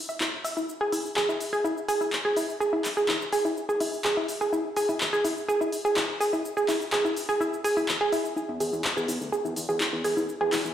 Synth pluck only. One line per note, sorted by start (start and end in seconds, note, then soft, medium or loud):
0.09 0.12 E5 medium
0.21 0.28 E4 medium
0.44 0.48 E5 medium
0.57 0.64 E4 medium
0.81 0.84 G#4 medium
0.92 1.00 E4 medium
1.16 1.20 G#4 medium
1.29 1.36 E4 medium
1.53 1.56 G#4 loud
1.64 1.72 E4 medium
1.89 1.92 G#4 loud
2.01 2.08 E4 medium
2.25 2.28 G#4 loud
2.37 2.44 E4 medium
2.60 2.64 G#4 loud
2.73 2.80 E4 medium
2.97 3.00 G#4 loud
3.09 3.16 E4 medium
3.33 3.36 G#4 medium
3.45 3.52 E4 medium
3.69 3.72 G#4 loud
3.81 3.88 E4 medium
4.05 4.08 G#4 medium
4.17 4.24 E4 medium
4.41 4.44 G#4 medium
4.53 4.60 E4 medium
4.77 4.80 G#4 loud
4.89 4.96 E4 medium
5.13 5.16 G#4 loud
5.25 5.32 E4 medium
5.49 5.52 G#4 loud
5.61 5.68 E4 medium
5.85 5.88 G#4 loud
5.97 6.04 E4 medium
6.21 6.24 G#4 loud
6.33 6.40 E4 medium
6.57 6.60 G#4 loud
6.68 6.76 E4 medium
6.93 6.96 G#4 loud
7.05 7.12 E4 medium
7.29 7.32 G#4 loud
7.41 7.48 E4 medium
7.64 7.68 G#4 loud
7.77 7.84 E4 medium
8.01 8.04 G#4 loud
8.12 8.20 E4 medium
8.36 8.44 E4 medium
8.60 8.64 G#4 loud
8.73 8.80 E4 medium
8.97 9.00 G#4 loud
9.08 9.16 E4 medium
9.32 9.36 G#4 loud
9.45 9.52 E4 medium
9.69 9.72 G#4 loud
9.80 9.88 E4 medium
10.04 10.08 G#4 loud
10.17 10.24 E4 medium
10.41 10.44 G#4 medium
10.53 10.60 E4 medium